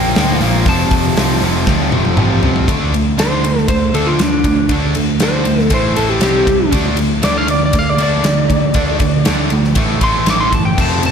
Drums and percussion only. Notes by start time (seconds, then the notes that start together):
0.16 snare, open hi-hat
0.41 open hi-hat
0.66 kick, open hi-hat
0.91 kick, open hi-hat
1.17 snare, open hi-hat
1.41 open hi-hat
1.67 kick, snare
1.92 high tom
2.05 high tom
2.17 mid tom
2.43 floor tom
2.56 floor tom
2.68 kick, ride
2.94 ride
3.19 snare, ride
3.44 ride
3.57 snare
3.68 kick, ride
3.94 ride
4.19 snare, ride
4.44 kick, ride
4.69 kick, ride
4.95 ride
5.20 snare, ride
5.45 ride
5.59 snare
5.70 kick, ride
5.96 ride
6.21 snare, ride
6.47 kick, ride
6.72 kick, ride
6.97 ride
7.23 snare, ride
7.48 ride
7.73 kick, ride
7.98 ride
8.24 snare, ride
8.50 kick, ride
8.74 kick, ride
9.00 kick, ride
9.25 snare, ride
9.50 ride
9.64 snare
9.75 kick, ride
10.01 kick, ride
10.26 snare, ride
10.53 kick, ride
10.78 kick, crash
11.03 ride